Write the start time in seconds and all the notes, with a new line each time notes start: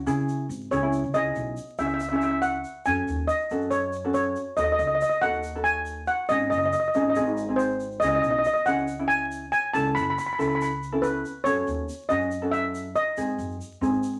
0.07 C#3 C#4 E4 G#4, shaker
0.29 shaker
0.49 G#1, shaker
0.61 shaker
0.71 C#2 C#4 E4 G#4 C#5, shaker
0.83 C#4 E4 G#4
0.93 shaker
1.04 C#3, shaker
1.14 C#2 C#4 E4 G#4 D#5, shaker
1.35 B1, shaker
1.57 shaker
1.68 shaker
1.78 C#2 C#4 E4 G#4 E5, shaker
1.87 E5, shaker
1.94 E5
2.00 E5, shaker
2.09 C#4 E4 G#4 E5
2.16 E5
2.21 E5, shaker
2.31 E5
2.42 F#5, shaker
2.64 shaker
2.85 F#2 C#4 F#4 A4 G#5, shaker
3.07 D#2, shaker
3.27 D#5, shaker
3.40 shaker
3.50 F#2 C#4 F#4 A4, shaker
3.61 shaker
3.71 C#5, shaker
3.93 shaker
4.05 C#4 F#4 A4
4.14 C#5, shaker
4.36 shaker
4.57 D#2 D#4 F#4 A4 D#5, shaker
4.64 D#5
4.72 D#5
4.79 C#2 D#5, shaker
4.87 D#5
4.95 D#5
5.01 D#5, shaker
5.09 D#5, shaker
5.21 D#2 D#4 F#4 A4 F#5, shaker
5.33 shaker
5.43 shaker
5.55 D#4 F#4 A4
5.64 G#5, shaker
5.86 shaker
6.07 F#5, shaker
6.29 G#1 C#4 D#4 G#4 D#5, shaker
6.40 shaker
6.50 F#1 D#5, shaker
6.58 D#5
6.63 D#5, shaker
6.72 D#5, shaker
6.80 D#5
6.84 D#5, shaker
6.94 G#1 C#4 D#4 G#4 D#5, shaker
7.02 D#5
7.10 D#5
7.15 G#1 C4 D#4 G#4 D#5, shaker
7.37 shaker
7.49 C4 D#4 G#4
7.56 C5, shaker
7.80 shaker
7.91 shaker
8.00 C#2 C#4 G#4 D#5, shaker
8.04 E4
8.08 D#5
8.15 D#5
8.22 B1 D#5, shaker
8.31 D#5
8.39 D#5
8.44 D#5, shaker
8.54 D#5, shaker
8.66 C#2 C#4 E4 G#4 F#5, shaker
8.88 shaker
8.99 C#4 E4 G#4
9.08 G#5, shaker
9.31 shaker
9.52 G#5, shaker
9.74 C#2 C#4 E4 A4 A5, shaker
9.95 F#1 B5, shaker
10.03 B5
10.10 B5
10.18 B5, shaker
10.26 B5
10.33 B5
10.39 C#2 C#4 E4 A4 B5, shaker
10.48 B5, shaker
10.55 B5
10.61 B5, shaker
10.83 shaker
10.93 C#4 E4 A4
11.02 B4, shaker
11.25 shaker
11.44 F#2 C#4 F#4 A4 C#5, shaker
11.67 D#2, shaker
11.89 shaker
11.99 shaker
12.09 F#2 C#4 F#4 G#4 D#5, shaker
12.21 shaker
12.31 shaker
12.42 C#4 F#4 A4
12.51 E5, shaker
12.75 shaker
12.96 D#5, shaker
13.17 G#2 C4 D#4 G#4, shaker
13.29 shaker
13.38 F#2, shaker
13.50 shaker
13.61 shaker
13.72 shaker
13.81 G#2 C4 D#4 G#4, shaker
13.93 shaker
14.03 shaker
14.15 shaker